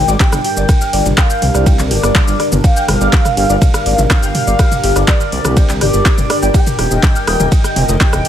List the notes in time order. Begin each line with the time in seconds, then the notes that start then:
Already playing: G2 D3 G3 D4 G4 A#4 G5
0.08 G#1 D5 D6, shaker
0.20 G4 G5, kick, clap, ride, shaker
0.32 G1, cross-stick, mid tom, shaker
0.44 G4 G5, open hi-hat
0.57 G1 D5 D6, shaker
0.69 kick, cross-stick, mid tom, ride, shaker
0.81 F6, shaker
0.93 G1 D5 D6, open hi-hat
1.06 G1, mid tom, shaker
1.18 F5 G5 G6, kick, cross-stick, clap, ride, shaker
1.30 G5 G6, shaker
1.42 C2, open hi-hat, mid tom
1.54 C2 D5 D6, cross-stick, shaker
1.66 G4 G5, kick, ride, shaker
1.79 clap, mid tom, shaker
1.91 G1 G4 D5 G5, open hi-hat
2.03 G1 D5 D6, cross-stick, shaker
2.15 kick, clap, mid tom, ride, shaker
2.28 G1 F6, shaker
2.40 D5 D6, cross-stick, open hi-hat
2.52 G1, mid tom, shaker
2.64 F5 G5 G6, kick, ride, shaker
2.77 G5 G6, shaker
2.88 G1, cross-stick, open hi-hat, mid tom
3.01 G1 D5 D6, shaker
3.13 G4 G5, kick, clap, ride, shaker
3.25 cross-stick, mid tom, shaker
3.37 G1 G4 G5, open hi-hat
3.50 G1 D5 D6, shaker
3.62 kick, mid tom, ride, shaker
3.74 F6, cross-stick, shaker
3.86 G#1 D5 D6, open hi-hat
3.98 G#1, mid tom, shaker
4.10 F5 G5 G6, kick, cross-stick, clap, ride, shaker
4.23 G1 G5 G6, shaker
4.35 open hi-hat, mid tom
4.47 G1 D5 D6, shaker
4.59 G4 G5, kick, cross-stick, ride, shaker
4.72 mid tom, shaker
4.84 G1 G4 G5, open hi-hat
4.96 G1 D5 D6, cross-stick, shaker
5.08 D5, kick, clap, mid tom, ride, shaker
5.20 F6, shaker
5.32 C2 D5 D6, open hi-hat
5.45 C2, cross-stick, mid tom, shaker
5.57 G5 G6, kick, ride, shaker
5.69 G5 G6, clap, shaker
5.81 G1 G4 D5 G5, cross-stick, open hi-hat, mid tom
5.93 G1 G4 G5, shaker
6.05 G4, kick, clap, ride, shaker
6.18 G1, mid tom, shaker
6.30 D5 D6, cross-stick, open hi-hat
6.42 G1 G5 G6, shaker
6.54 G4 A#4 D#5 G5, kick, ride, shaker
6.67 mid tom, shaker
6.79 D#1 G4 G5, cross-stick, open hi-hat
6.91 D#1 D#5 D#6, shaker
7.03 kick, clap, mid tom, ride, shaker
7.16 F6, shaker
7.27 D#1 D#6, cross-stick, open hi-hat
7.40 D#1, mid tom, shaker
7.52 G5 G6, kick, ride, shaker
7.64 G5 G6, cross-stick, shaker
7.76 F1, open hi-hat, mid tom
7.89 F1 D#5 D#6, shaker
8.01 G4 G5, kick, clap, ride, shaker
8.13 D#1, cross-stick, mid tom, shaker
8.25 G4 G5, open hi-hat